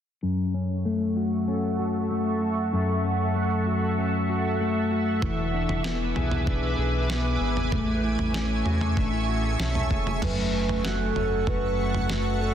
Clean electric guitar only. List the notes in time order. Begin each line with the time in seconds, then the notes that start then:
0.23 F#2
0.54 C#4
0.85 A3
1.16 F#4
1.48 C#4
1.79 F#4
2.11 A3
2.42 F#4
2.73 F#2
3.04 C#4
3.36 A3
3.67 F#4
3.98 C#4
4.30 F#4
4.60 A3
4.91 F#4
5.22 E3
5.54 D4
5.85 B3
6.16 G#4
6.47 D4
6.79 G#4
7.10 B3
7.42 G#4
7.73 A3
8.04 E4
8.35 C#4
8.66 F#4
8.82 G#4
8.98 D4
9.13 E4
9.29 F#4
9.44 G#4
9.60 C#4
9.91 G#4
10.23 F#2
10.54 A3
10.85 F#4
11.16 C#4
11.48 F#4
11.79 A3
12.10 F#4
12.41 C#4